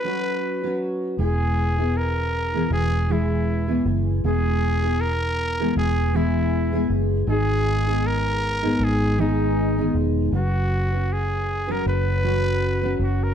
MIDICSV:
0, 0, Header, 1, 4, 480
1, 0, Start_track
1, 0, Tempo, 761421
1, 754, Time_signature, 4, 2, 24, 8
1, 8410, End_track
2, 0, Start_track
2, 0, Title_t, "Trumpet"
2, 0, Program_c, 0, 56
2, 0, Note_on_c, 0, 71, 107
2, 495, Note_off_c, 0, 71, 0
2, 750, Note_on_c, 0, 68, 101
2, 1243, Note_on_c, 0, 70, 109
2, 1253, Note_off_c, 0, 68, 0
2, 1719, Note_off_c, 0, 70, 0
2, 1721, Note_on_c, 0, 68, 108
2, 1967, Note_on_c, 0, 64, 87
2, 1977, Note_off_c, 0, 68, 0
2, 2441, Note_off_c, 0, 64, 0
2, 2693, Note_on_c, 0, 68, 101
2, 3158, Note_on_c, 0, 70, 117
2, 3168, Note_off_c, 0, 68, 0
2, 3636, Note_off_c, 0, 70, 0
2, 3644, Note_on_c, 0, 68, 105
2, 3884, Note_on_c, 0, 64, 90
2, 3894, Note_off_c, 0, 68, 0
2, 4359, Note_off_c, 0, 64, 0
2, 4602, Note_on_c, 0, 68, 111
2, 5084, Note_on_c, 0, 70, 118
2, 5094, Note_off_c, 0, 68, 0
2, 5574, Note_on_c, 0, 68, 109
2, 5584, Note_off_c, 0, 70, 0
2, 5804, Note_on_c, 0, 63, 90
2, 5814, Note_off_c, 0, 68, 0
2, 6279, Note_off_c, 0, 63, 0
2, 6533, Note_on_c, 0, 66, 93
2, 7014, Note_on_c, 0, 68, 99
2, 7024, Note_off_c, 0, 66, 0
2, 7385, Note_on_c, 0, 70, 96
2, 7395, Note_off_c, 0, 68, 0
2, 7483, Note_off_c, 0, 70, 0
2, 7492, Note_on_c, 0, 71, 112
2, 8177, Note_off_c, 0, 71, 0
2, 8215, Note_on_c, 0, 66, 83
2, 8344, Note_on_c, 0, 70, 89
2, 8353, Note_off_c, 0, 66, 0
2, 8410, Note_off_c, 0, 70, 0
2, 8410, End_track
3, 0, Start_track
3, 0, Title_t, "Steel-string acoustic guitar"
3, 0, Program_c, 1, 25
3, 24, Note_on_c, 1, 54, 79
3, 29, Note_on_c, 1, 61, 80
3, 32, Note_on_c, 1, 71, 91
3, 33, Note_on_c, 1, 66, 82
3, 392, Note_off_c, 1, 66, 0
3, 393, Note_off_c, 1, 71, 0
3, 395, Note_off_c, 1, 61, 0
3, 398, Note_off_c, 1, 54, 0
3, 400, Note_on_c, 1, 66, 72
3, 401, Note_on_c, 1, 71, 80
3, 403, Note_on_c, 1, 61, 68
3, 405, Note_on_c, 1, 54, 69
3, 743, Note_off_c, 1, 54, 0
3, 745, Note_off_c, 1, 61, 0
3, 746, Note_on_c, 1, 56, 58
3, 747, Note_on_c, 1, 59, 68
3, 750, Note_off_c, 1, 66, 0
3, 751, Note_off_c, 1, 71, 0
3, 753, Note_on_c, 1, 64, 68
3, 758, Note_on_c, 1, 68, 71
3, 1109, Note_off_c, 1, 68, 0
3, 1116, Note_off_c, 1, 64, 0
3, 1117, Note_on_c, 1, 68, 52
3, 1119, Note_off_c, 1, 59, 0
3, 1122, Note_off_c, 1, 56, 0
3, 1123, Note_on_c, 1, 64, 50
3, 1127, Note_on_c, 1, 59, 43
3, 1594, Note_off_c, 1, 64, 0
3, 1600, Note_off_c, 1, 68, 0
3, 1602, Note_off_c, 1, 59, 0
3, 1602, Note_on_c, 1, 64, 64
3, 1602, Note_on_c, 1, 68, 73
3, 1604, Note_on_c, 1, 59, 65
3, 1609, Note_on_c, 1, 52, 55
3, 1610, Note_on_c, 1, 56, 65
3, 1938, Note_off_c, 1, 52, 0
3, 1942, Note_off_c, 1, 56, 0
3, 1944, Note_off_c, 1, 59, 0
3, 1946, Note_off_c, 1, 64, 0
3, 1946, Note_on_c, 1, 52, 77
3, 1947, Note_off_c, 1, 68, 0
3, 1950, Note_on_c, 1, 56, 80
3, 1952, Note_on_c, 1, 59, 81
3, 1953, Note_on_c, 1, 64, 83
3, 1954, Note_on_c, 1, 68, 89
3, 2310, Note_off_c, 1, 64, 0
3, 2310, Note_off_c, 1, 68, 0
3, 2315, Note_off_c, 1, 59, 0
3, 2317, Note_off_c, 1, 52, 0
3, 2317, Note_on_c, 1, 68, 74
3, 2318, Note_off_c, 1, 56, 0
3, 2318, Note_on_c, 1, 64, 72
3, 2322, Note_on_c, 1, 59, 74
3, 2324, Note_on_c, 1, 52, 66
3, 2326, Note_on_c, 1, 56, 67
3, 2665, Note_off_c, 1, 56, 0
3, 2668, Note_off_c, 1, 59, 0
3, 2670, Note_off_c, 1, 64, 0
3, 2670, Note_off_c, 1, 68, 0
3, 2673, Note_off_c, 1, 52, 0
3, 2673, Note_on_c, 1, 56, 63
3, 2676, Note_on_c, 1, 59, 61
3, 2680, Note_on_c, 1, 64, 63
3, 2685, Note_on_c, 1, 68, 72
3, 3036, Note_off_c, 1, 68, 0
3, 3042, Note_off_c, 1, 64, 0
3, 3043, Note_on_c, 1, 68, 54
3, 3046, Note_off_c, 1, 56, 0
3, 3047, Note_off_c, 1, 59, 0
3, 3050, Note_on_c, 1, 64, 49
3, 3056, Note_on_c, 1, 59, 46
3, 3523, Note_off_c, 1, 64, 0
3, 3525, Note_off_c, 1, 68, 0
3, 3528, Note_on_c, 1, 68, 67
3, 3529, Note_off_c, 1, 59, 0
3, 3530, Note_on_c, 1, 64, 68
3, 3532, Note_on_c, 1, 59, 70
3, 3535, Note_on_c, 1, 56, 65
3, 3539, Note_on_c, 1, 52, 57
3, 3861, Note_off_c, 1, 52, 0
3, 3862, Note_off_c, 1, 56, 0
3, 3863, Note_off_c, 1, 59, 0
3, 3864, Note_off_c, 1, 64, 0
3, 3869, Note_off_c, 1, 68, 0
3, 3869, Note_on_c, 1, 52, 79
3, 3869, Note_on_c, 1, 56, 86
3, 3870, Note_on_c, 1, 59, 82
3, 3872, Note_on_c, 1, 64, 87
3, 3877, Note_on_c, 1, 68, 96
3, 4232, Note_off_c, 1, 68, 0
3, 4235, Note_off_c, 1, 64, 0
3, 4236, Note_off_c, 1, 59, 0
3, 4238, Note_off_c, 1, 52, 0
3, 4240, Note_off_c, 1, 56, 0
3, 4240, Note_on_c, 1, 68, 76
3, 4243, Note_on_c, 1, 64, 81
3, 4244, Note_on_c, 1, 59, 67
3, 4245, Note_on_c, 1, 52, 65
3, 4247, Note_on_c, 1, 56, 63
3, 4574, Note_off_c, 1, 56, 0
3, 4579, Note_off_c, 1, 59, 0
3, 4581, Note_on_c, 1, 56, 66
3, 4587, Note_on_c, 1, 59, 65
3, 4589, Note_off_c, 1, 64, 0
3, 4591, Note_off_c, 1, 68, 0
3, 4592, Note_on_c, 1, 63, 73
3, 4594, Note_off_c, 1, 52, 0
3, 4598, Note_on_c, 1, 68, 72
3, 4956, Note_off_c, 1, 68, 0
3, 4957, Note_off_c, 1, 63, 0
3, 4960, Note_off_c, 1, 56, 0
3, 4962, Note_off_c, 1, 59, 0
3, 4964, Note_on_c, 1, 68, 59
3, 4965, Note_on_c, 1, 63, 58
3, 4969, Note_on_c, 1, 59, 48
3, 4975, Note_on_c, 1, 56, 44
3, 5429, Note_off_c, 1, 63, 0
3, 5429, Note_off_c, 1, 68, 0
3, 5435, Note_off_c, 1, 56, 0
3, 5436, Note_on_c, 1, 68, 73
3, 5437, Note_off_c, 1, 59, 0
3, 5437, Note_on_c, 1, 63, 77
3, 5439, Note_on_c, 1, 59, 71
3, 5442, Note_on_c, 1, 56, 69
3, 5443, Note_on_c, 1, 51, 58
3, 5444, Note_on_c, 1, 44, 66
3, 5776, Note_off_c, 1, 44, 0
3, 5779, Note_off_c, 1, 51, 0
3, 5784, Note_off_c, 1, 56, 0
3, 5784, Note_off_c, 1, 59, 0
3, 5784, Note_off_c, 1, 63, 0
3, 5784, Note_on_c, 1, 44, 85
3, 5785, Note_off_c, 1, 68, 0
3, 5786, Note_on_c, 1, 51, 83
3, 5791, Note_on_c, 1, 59, 91
3, 5792, Note_on_c, 1, 56, 81
3, 5792, Note_on_c, 1, 63, 91
3, 5793, Note_on_c, 1, 68, 91
3, 6157, Note_off_c, 1, 68, 0
3, 6158, Note_off_c, 1, 63, 0
3, 6159, Note_off_c, 1, 56, 0
3, 6160, Note_off_c, 1, 44, 0
3, 6161, Note_off_c, 1, 59, 0
3, 6162, Note_off_c, 1, 51, 0
3, 6164, Note_on_c, 1, 68, 75
3, 6166, Note_on_c, 1, 63, 72
3, 6167, Note_on_c, 1, 56, 73
3, 6168, Note_on_c, 1, 59, 72
3, 6171, Note_on_c, 1, 44, 64
3, 6172, Note_on_c, 1, 51, 61
3, 6501, Note_off_c, 1, 56, 0
3, 6503, Note_on_c, 1, 54, 60
3, 6507, Note_off_c, 1, 59, 0
3, 6508, Note_off_c, 1, 63, 0
3, 6510, Note_on_c, 1, 61, 60
3, 6511, Note_on_c, 1, 66, 66
3, 6512, Note_off_c, 1, 68, 0
3, 6516, Note_off_c, 1, 44, 0
3, 6516, Note_off_c, 1, 51, 0
3, 6516, Note_on_c, 1, 71, 68
3, 6868, Note_off_c, 1, 71, 0
3, 6875, Note_on_c, 1, 71, 54
3, 6877, Note_off_c, 1, 66, 0
3, 6880, Note_off_c, 1, 54, 0
3, 6883, Note_off_c, 1, 61, 0
3, 6885, Note_on_c, 1, 66, 47
3, 6892, Note_on_c, 1, 61, 44
3, 7357, Note_off_c, 1, 66, 0
3, 7357, Note_off_c, 1, 71, 0
3, 7360, Note_on_c, 1, 71, 78
3, 7361, Note_off_c, 1, 61, 0
3, 7364, Note_on_c, 1, 66, 66
3, 7368, Note_on_c, 1, 54, 64
3, 7369, Note_on_c, 1, 61, 67
3, 7704, Note_off_c, 1, 54, 0
3, 7706, Note_off_c, 1, 61, 0
3, 7709, Note_off_c, 1, 66, 0
3, 7710, Note_off_c, 1, 71, 0
3, 7711, Note_on_c, 1, 54, 85
3, 7714, Note_on_c, 1, 61, 82
3, 7717, Note_on_c, 1, 66, 86
3, 7720, Note_on_c, 1, 71, 91
3, 8074, Note_off_c, 1, 66, 0
3, 8075, Note_off_c, 1, 71, 0
3, 8080, Note_off_c, 1, 61, 0
3, 8081, Note_off_c, 1, 54, 0
3, 8082, Note_on_c, 1, 66, 77
3, 8082, Note_on_c, 1, 71, 76
3, 8088, Note_on_c, 1, 54, 70
3, 8088, Note_on_c, 1, 61, 75
3, 8410, Note_off_c, 1, 54, 0
3, 8410, Note_off_c, 1, 61, 0
3, 8410, Note_off_c, 1, 66, 0
3, 8410, Note_off_c, 1, 71, 0
3, 8410, End_track
4, 0, Start_track
4, 0, Title_t, "Fingered electric bass"
4, 0, Program_c, 2, 33
4, 748, Note_on_c, 2, 28, 109
4, 1686, Note_off_c, 2, 28, 0
4, 1707, Note_on_c, 2, 28, 108
4, 2406, Note_off_c, 2, 28, 0
4, 2430, Note_on_c, 2, 30, 91
4, 2653, Note_off_c, 2, 30, 0
4, 2673, Note_on_c, 2, 28, 107
4, 3609, Note_off_c, 2, 28, 0
4, 3635, Note_on_c, 2, 28, 109
4, 4329, Note_off_c, 2, 28, 0
4, 4349, Note_on_c, 2, 30, 89
4, 4572, Note_off_c, 2, 30, 0
4, 4585, Note_on_c, 2, 32, 123
4, 5524, Note_off_c, 2, 32, 0
4, 5547, Note_on_c, 2, 32, 116
4, 6245, Note_off_c, 2, 32, 0
4, 6269, Note_on_c, 2, 28, 88
4, 6491, Note_off_c, 2, 28, 0
4, 6508, Note_on_c, 2, 30, 106
4, 7445, Note_off_c, 2, 30, 0
4, 7477, Note_on_c, 2, 30, 114
4, 8169, Note_off_c, 2, 30, 0
4, 8191, Note_on_c, 2, 30, 92
4, 8410, Note_off_c, 2, 30, 0
4, 8410, End_track
0, 0, End_of_file